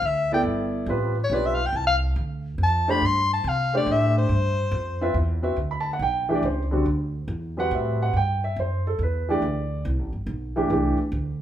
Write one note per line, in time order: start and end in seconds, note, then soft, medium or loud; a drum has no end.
0.02 0.43 D2 medium
0.06 0.33 E5 loud
0.32 0.85 B3 medium
0.32 0.85 E4 medium
0.32 0.86 A4 medium
0.32 0.86 D5 medium
0.32 0.42 G5 medium
0.43 0.86 G1 medium
0.86 1.29 A1 medium
0.86 1.14 G3 medium
0.86 1.14 C4 medium
0.86 1.15 F4 medium
0.86 1.15 B4 medium
1.24 1.36 C#5 medium
1.30 1.72 B1 loud
1.30 1.57 G3 medium
1.30 1.57 C4 medium
1.30 1.57 F4 medium
1.30 1.58 B4 medium
1.35 1.48 D5 medium
1.46 1.56 E5 medium
1.55 1.67 F5 loud
1.66 1.78 G5 medium
1.73 2.14 C2 medium
1.73 1.86 A5 loud
1.87 1.96 F5 loud
2.16 2.57 D2 loud
2.58 3.00 F2 medium
2.63 2.92 A5 loud
2.88 3.00 A3 medium
2.88 3.00 D4 medium
2.88 3.00 G4 medium
2.88 3.01 C5 medium
2.88 3.07 B5 loud
3.02 3.43 G2 medium
3.06 3.32 C6 loud
3.34 3.50 A5 loud
3.44 3.85 C3 loud
3.48 3.75 F5 medium
3.74 4.27 A3 medium
3.74 4.27 D4 medium
3.74 4.27 G4 medium
3.74 4.28 C5 medium
3.74 3.93 D5 loud
3.86 4.28 A2 loud
3.92 4.18 E5 loud
4.18 5.12 C5 medium
4.29 4.71 G2 medium
4.72 5.13 F2 loud
5.01 5.14 C4 medium
5.01 5.14 F4 medium
5.01 5.14 B4 medium
5.01 5.14 E5 medium
5.14 5.56 E2 medium
5.42 5.56 C4 medium
5.42 5.56 F#4 medium
5.42 5.56 B4 medium
5.42 5.56 E5 medium
5.56 5.98 D2 medium
5.71 5.85 B5 medium
5.80 5.90 A5 medium
5.93 6.00 F#5 medium
5.99 6.41 B1 medium
5.99 6.35 G5 medium
6.29 6.41 E3 medium
6.29 6.42 A3 medium
6.29 6.42 D4 medium
6.29 6.42 G4 medium
6.35 6.42 D5 medium
6.43 6.84 C#2 medium
6.43 6.62 C5 medium
6.71 6.84 D3 medium
6.71 6.84 G3 medium
6.71 6.84 C4 medium
6.71 6.85 F#4 medium
6.86 7.27 D2 medium
7.28 7.69 E2 loud
7.57 8.11 G3 medium
7.57 8.11 C4 medium
7.57 8.12 F#4 medium
7.57 8.12 B4 medium
7.57 7.72 F#5 medium
7.71 8.12 A2 medium
7.71 8.01 E5 medium
8.02 8.15 F#5 medium
8.13 8.55 G2 medium
8.13 8.43 G5 medium
8.44 8.57 E5 medium
8.56 8.98 F#2 medium
8.56 8.86 C5 medium
8.87 9.00 A4 medium
8.99 9.40 E2 medium
9.03 9.29 B4 medium
9.29 9.41 E3 medium
9.29 9.41 A3 medium
9.29 9.41 D4 medium
9.29 9.41 G4 medium
9.29 9.82 D5 medium
9.42 9.83 D2 medium
9.85 9.99 C2 loud
9.99 10.12 A1 medium
10.13 10.26 G1 medium
10.27 10.68 B1 medium
10.56 10.68 E3 medium
10.56 10.69 A3 medium
10.56 10.69 D4 medium
10.56 10.69 G4 medium
10.70 10.97 C2 medium
10.70 10.96 E3 medium
10.70 10.96 A3 medium
10.70 10.97 D4 medium
10.70 10.97 G4 medium
10.99 muted upright bass stroke soft
11.12 11.42 D2 loud